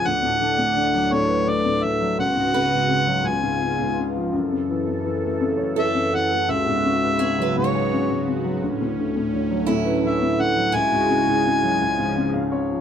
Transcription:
0.00 0.37 F3 medium
0.00 0.57 G#4 soft
0.00 0.77 B4 soft
0.05 2.16 D2 medium
0.05 2.15 D2 medium
0.05 2.16 A2 medium
0.05 2.16 D4 medium
0.05 1.14 F#5 medium
0.22 0.57 A2 soft
0.40 0.74 D3 soft
0.58 1.10 A2 soft
0.76 1.45 D3 medium
0.94 1.99 F#3 soft
1.12 1.64 A2 medium
1.12 1.51 C#5 medium
1.28 2.15 B4 medium
1.47 1.82 D3 soft
1.47 1.85 D5 medium
1.65 2.17 A2 soft
1.84 2.18 D3 medium
1.84 2.19 E5 medium
2.01 2.18 F#3 medium
2.18 3.22 C#2 medium
2.18 4.32 C#3 medium
2.18 4.32 B3 medium
2.18 3.25 F#4 medium
2.18 3.29 F#5 loud
2.36 2.71 G#2 soft
2.54 2.88 C#3 soft
2.54 3.58 B4 soft
2.73 3.24 G#2 soft
2.89 3.24 C#3 soft
3.07 3.25 F#3 soft
3.23 4.29 C#2 medium
3.23 4.32 F4 medium
3.27 4.07 G#5 medium
3.42 3.78 G#2 soft
3.60 3.96 C#3 soft
3.79 4.32 G#2 soft
3.98 4.32 C#3 soft
4.15 4.33 F3 soft
4.32 6.45 F#2 medium
4.32 6.43 F#2 medium
4.32 6.45 E3 medium
4.32 6.45 A4 medium
4.52 4.86 C#3 soft
4.69 5.03 E3 soft
4.87 5.39 C#3 soft
5.04 5.75 E3 soft
5.24 6.30 A3 soft
5.41 5.93 C#3 medium
5.57 6.44 C#5 soft
5.76 6.11 E3 medium
5.76 6.79 A4 soft
5.76 6.16 E5 medium
5.94 6.46 C#3 soft
6.12 6.47 E3 soft
6.12 6.52 F#5 loud
6.32 6.48 A3 soft
6.49 8.57 C#2 medium
6.49 8.59 C#3 medium
6.49 8.59 B3 medium
6.49 8.59 F#4 medium
6.49 7.56 E5 loud
6.66 7.01 G#2 medium
6.84 7.19 C#3 soft
7.03 7.55 G#2 soft
7.19 7.91 C#3 soft
7.19 8.92 G#4 medium
7.38 8.43 F#3 soft
7.38 9.12 B4 soft
7.57 8.09 G#2 medium
7.57 8.32 C#5 medium
7.64 9.32 C#5 soft
7.75 8.59 G#4 soft
7.93 8.26 C#3 medium
8.10 8.60 G#2 soft
8.28 8.61 C#3 soft
8.44 8.61 F#3 medium
8.61 10.70 D2 medium
8.61 10.69 D2 medium
8.61 10.70 A2 medium
8.61 10.70 C#4 medium
8.81 9.15 A2 soft
8.98 9.32 D3 soft
9.16 9.66 A2 soft
9.34 10.02 D3 soft
9.51 10.55 F#3 soft
9.66 10.20 A2 medium
9.66 10.71 E4 medium
9.85 10.70 B4 soft
10.04 10.37 D3 soft
10.04 10.42 E5 medium
10.22 10.72 A2 soft
10.38 10.72 D3 medium
10.38 10.76 F#5 loud
10.57 10.73 F#3 soft
10.72 11.77 C#2 medium
10.72 11.79 C#3 medium
10.72 12.81 G#3 medium
10.72 12.11 E4 medium
10.72 11.79 F#4 medium
10.72 12.53 G#5 loud
10.91 11.25 G#2 medium
11.09 11.43 C#3 soft
11.27 11.78 G#2 soft
11.45 11.79 C#3 soft
11.63 11.80 F#3 medium
11.80 12.81 C#2 medium
11.80 12.81 C#3 medium
11.80 12.81 F3 medium
11.98 12.32 G#2 soft
12.16 12.50 C#3 medium
12.16 12.32 G#5 medium
12.34 12.81 G#2 soft
12.34 12.50 F5 medium
12.52 12.81 C#3 medium
12.52 12.81 C#5 medium
12.70 12.81 F3 soft

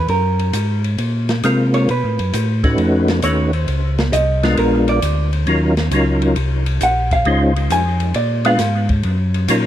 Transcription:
0.08 0.52 F#2 medium
0.08 0.81 A#4 medium
0.08 ride medium
0.39 ride soft
0.53 0.97 G#2 medium
0.53 hi-hat pedal medium
0.53 ride medium
0.84 ride soft
0.98 1.42 A#2 medium
0.98 ride medium
1.29 snare soft
1.29 ride soft
1.43 1.88 C3 medium
1.43 1.89 G#3 medium
1.43 1.89 A#3 soft
1.43 1.89 C4 soft
1.43 1.90 F4 soft
1.43 1.90 A#4 medium
1.43 hi-hat pedal soft
1.43 ride medium
1.74 1.88 C#5 medium
1.74 ride soft
1.89 2.04 B2 medium
1.89 2.61 B4 medium
1.89 ride soft
2.04 2.19 A2 medium
2.19 2.33 F#2 medium
2.19 ride soft
2.33 2.77 A2 medium
2.33 hi-hat pedal medium
2.33 ride medium
2.63 3.20 A3 medium
2.63 3.20 C#4 medium
2.63 3.21 D#4 medium
2.63 3.21 F#4 medium
2.63 3.21 B4 medium
2.63 kick medium
2.63 ride soft
2.78 3.22 F2 medium
2.78 ride medium
3.08 snare medium
3.08 ride soft
3.22 3.66 D#2 medium
3.22 3.51 A3 soft
3.22 3.51 C#4 soft
3.22 3.51 D#4 soft
3.22 3.51 F#4 soft
3.22 3.52 B4 medium
3.22 3.53 C#5 medium
3.22 hi-hat pedal medium
3.22 ride medium
3.53 4.13 C5 loud
3.53 ride soft
3.68 4.11 C#2 medium
3.68 ride medium
3.98 snare medium
3.98 ride soft
4.12 4.56 C2 medium
4.12 4.55 D#5 medium
4.12 hi-hat pedal medium
4.12 ride medium
4.43 4.99 G#3 medium
4.43 5.00 B3 medium
4.43 5.00 D4 medium
4.43 5.00 F4 medium
4.43 5.00 A#4 medium
4.43 snare soft
4.43 ride soft
4.57 5.01 A#1 medium
4.57 4.88 A#4 medium
4.57 ride medium
4.88 5.30 D5 medium
4.88 ride medium
5.02 5.46 D2 medium
5.02 hi-hat pedal soft
5.02 ride medium
5.33 ride soft
5.46 5.90 D#2 medium
5.46 5.74 F#3 medium
5.46 5.74 C#4 medium
5.46 5.75 D#4 medium
5.46 5.75 F4 medium
5.46 5.75 A#4 medium
5.46 ride medium
5.77 snare soft
5.77 ride soft
5.91 6.35 C#2 medium
5.91 6.37 F#3 medium
5.91 6.37 C#4 medium
5.91 6.37 D#4 medium
5.91 6.38 F4 medium
5.91 6.38 A#4 medium
5.91 hi-hat pedal medium
5.91 ride medium
6.22 ride soft
6.36 6.80 C2 medium
6.36 ride medium
6.66 ride medium
6.81 7.24 A#1 medium
6.81 7.12 F#5 medium
6.81 hi-hat pedal medium
6.81 ride medium
7.11 7.67 F5 medium
7.11 kick soft
7.11 ride soft
7.25 7.69 C#2 medium
7.25 7.53 G#3 medium
7.25 7.54 C#4 medium
7.25 7.54 D#4 medium
7.25 7.54 F4 medium
7.25 7.54 C5 medium
7.25 ride soft
7.56 ride soft
7.70 8.14 F2 medium
7.70 8.13 G#5 loud
7.70 hi-hat pedal medium
7.70 ride medium
8.00 ride medium
8.14 8.59 A#2 medium
8.14 8.45 D5 medium
8.14 ride medium
8.45 8.58 G#3 medium
8.45 8.59 B3 medium
8.45 8.59 D4 medium
8.45 8.59 F4 medium
8.45 8.60 B4 medium
8.45 8.88 F5 loud
8.45 ride medium
8.59 9.03 G#2 medium
8.59 snare soft
8.59 hi-hat pedal medium
8.59 ride medium
8.89 kick medium
8.89 ride soft
9.03 9.48 F#2 medium
9.03 ride medium
9.34 ride soft
9.48 9.66 A#2 medium
9.48 9.66 F#3 medium
9.48 9.66 C#4 medium
9.48 9.66 D#4 medium
9.48 9.66 F4 medium
9.48 9.66 A#4 medium
9.48 hi-hat pedal medium
9.48 ride medium

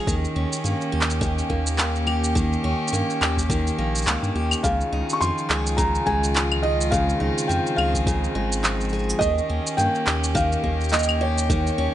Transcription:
0.00 0.14 C#3 medium
0.00 0.14 G#3 medium
0.00 6.88 C#4 medium
0.00 0.35 D#4 medium
0.00 0.14 G#4 medium
0.06 0.26 D#2 medium
0.06 11.94 D#3 medium
0.06 1.21 D#3 medium
0.06 4.60 G4 medium
0.06 kick loud
0.06 shaker medium
0.24 shaker soft
0.36 0.46 D#2 loud
0.36 2.64 C#4 medium
0.53 shaker medium
0.64 0.74 G2 medium
0.64 1.48 A#3 medium
0.64 shaker soft
0.81 shaker soft
0.92 1.43 D#2 medium
0.92 2.05 G4 medium
1.01 clap medium
1.10 shaker medium
1.21 2.35 D#3 medium
1.21 kick loud
1.21 shaker soft
1.38 shaker soft
1.50 2.57 D#2 medium
1.50 1.77 A#3 medium
1.50 kick medium
1.67 shaker medium
1.78 2.91 A#3 medium
1.78 clap medium
1.78 shaker medium
1.96 shaker soft
2.07 3.20 G4 medium
2.07 claves medium
2.24 shaker medium
2.35 3.49 D#3 medium
2.35 kick loud
2.35 shaker medium
2.53 shaker soft
2.64 2.74 D#2 medium
2.64 4.92 C#4 medium
2.88 shaker medium
2.93 3.03 G2 medium
2.93 3.77 A#3 medium
2.93 shaker medium
3.10 shaker soft
3.21 3.71 D#2 loud
3.21 4.34 G4 medium
3.21 clap medium
3.21 claves medium
3.37 kick medium
3.37 shaker medium
3.50 5.21 D#3 medium
3.50 kick loud
3.50 shaker medium
3.67 shaker soft
3.79 4.07 A#1 medium
3.79 4.06 A#3 medium
3.95 shaker medium
3.97 shaker soft
4.02 shaker soft
4.04 shaker soft
4.06 4.17 C#2 medium
4.06 4.70 A#3 medium
4.06 clap medium
4.06 shaker soft
4.08 shaker medium
4.23 4.31 G2 medium
4.23 shaker soft
4.35 4.55 D#2 medium
4.35 4.71 G4 medium
4.51 claves medium
4.51 shaker medium
4.63 4.83 C#2 loud
4.63 5.77 C#3 medium
4.63 9.18 F4 medium
4.63 5.16 F5 loud
4.63 kick loud
4.63 shaker medium
4.81 shaker soft
4.92 5.03 C#2 medium
4.92 7.20 D#4 medium
5.10 5.20 C#6 medium
5.10 shaker medium
5.21 5.31 F2 medium
5.21 6.33 F3 medium
5.21 5.80 C6 loud
5.21 shaker medium
5.38 shaker soft
5.50 5.99 C#2 medium
5.50 6.62 G#4 medium
5.50 clap medium
5.67 shaker medium
5.77 6.91 C#3 medium
5.77 6.07 A#5 medium
5.77 kick loud
5.77 shaker soft
5.95 shaker soft
6.06 7.14 C#2 loud
6.06 8.34 G#3 medium
6.06 6.65 G#5 medium
6.06 kick medium
6.24 shaker medium
6.34 7.48 F3 medium
6.34 clap medium
6.34 shaker medium
6.52 claves medium
6.62 7.77 G#4 medium
6.62 6.93 D#5 medium
6.81 shaker medium
6.91 8.06 C#3 medium
6.91 9.19 C4 medium
6.91 7.51 F5 loud
6.91 kick loud
6.91 shaker soft
7.09 shaker soft
7.20 7.31 C#2 medium
7.20 9.49 D#4 medium
7.38 shaker medium
7.47 7.60 F2 medium
7.47 8.63 F3 medium
7.47 7.78 G5 medium
7.47 shaker soft
7.67 shaker soft
7.76 8.28 C#2 loud
7.76 8.92 G#4 medium
7.76 8.30 F5 medium
7.76 claves medium
7.94 kick medium
7.94 shaker medium
8.07 9.28 C#3 medium
8.07 kick loud
8.07 shaker soft
8.24 shaker soft
8.35 9.14 G#1 medium
8.35 9.27 G#3 medium
8.52 shaker medium
8.64 9.20 F3 medium
8.64 clap medium
8.64 shaker soft
8.81 shaker soft
8.84 shaker soft
8.89 9.28 G#4 medium
8.89 shaker soft
8.94 shaker soft
8.99 shaker soft
9.03 shaker soft
9.10 shaker medium
9.19 9.40 D#2 loud
9.19 10.34 D#3 medium
9.19 11.48 C#4 medium
9.19 11.94 G4 medium
9.19 9.79 D#5 loud
9.19 kick loud
9.19 shaker soft
9.38 shaker soft
9.49 9.60 D#2 medium
9.49 11.78 C#4 medium
9.67 shaker medium
9.77 9.88 G2 medium
9.77 10.62 A#3 medium
9.77 10.37 G5 loud
9.77 shaker soft
9.95 shaker soft
10.07 10.57 D#2 loud
10.07 11.20 G4 medium
10.07 clap medium
10.24 shaker medium
10.35 11.49 D#3 loud
10.35 10.94 F5 loud
10.35 kick loud
10.35 shaker soft
10.52 shaker soft
10.64 11.71 D#2 medium
10.64 10.91 A#3 medium
10.64 kick medium
10.81 shaker soft
10.84 shaker soft
10.89 11.94 A#3 medium
10.89 11.22 D#5 medium
10.89 clap medium
10.89 shaker soft
10.93 shaker medium
10.99 shaker soft
11.03 shaker medium
11.09 claves medium
11.09 shaker soft
11.21 11.94 G4 medium
11.21 11.94 C#5 medium
11.38 shaker medium
11.50 11.94 D#3 medium
11.50 11.94 C#5 medium
11.50 kick loud
11.50 shaker soft
11.67 shaker soft
11.78 11.88 D#2 medium
11.78 11.94 C#4 medium

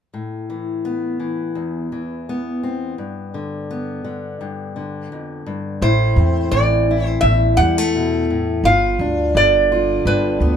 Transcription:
0.14 1.55 A2 soft
0.50 1.18 E3 soft
0.85 2.29 B3 soft
1.20 1.91 E3 soft
1.55 2.97 E2 soft
1.92 2.94 E3 soft
2.29 3.70 B3 soft
2.63 2.94 C4 soft
2.98 4.40 G2 soft
3.34 4.03 D3 soft
3.71 5.78 B3 soft
4.04 4.75 D3 soft
4.41 5.11 G2 soft
4.76 5.82 D3 soft
5.12 5.46 F2 soft
5.46 5.82 G2 soft
5.82 6.15 A1 medium
5.82 7.23 A2 medium
5.82 6.88 E4 medium
5.82 6.51 C5 medium
6.16 6.50 E2 medium
6.16 7.24 C4 soft
6.51 7.19 A1 medium
6.51 8.61 E3 medium
6.51 7.06 D5 medium
6.91 8.65 E4 soft
7.06 7.20 C5 medium
7.21 7.56 A1 medium
7.21 7.55 E5 medium
7.25 8.65 E2 soft
7.57 8.60 E2 medium
7.57 7.78 G3 soft
7.57 8.24 F#5 medium
7.78 8.65 A3 soft
7.95 8.30 B2 soft
8.30 8.65 A2 medium
8.64 8.98 G1 medium
8.64 10.05 G2 medium
8.64 9.71 F4 medium
8.64 9.38 F5 medium
8.99 9.33 D2 medium
8.99 10.06 D4 soft
9.35 10.02 G1 medium
9.35 10.57 D3 medium
9.35 10.03 D5 medium
9.72 10.57 F4 medium
10.05 10.39 G1 medium
10.05 10.57 G2 medium
10.05 10.57 D4 soft
10.05 10.57 B4 medium
10.40 10.57 D2 medium
10.40 10.57 B3 soft

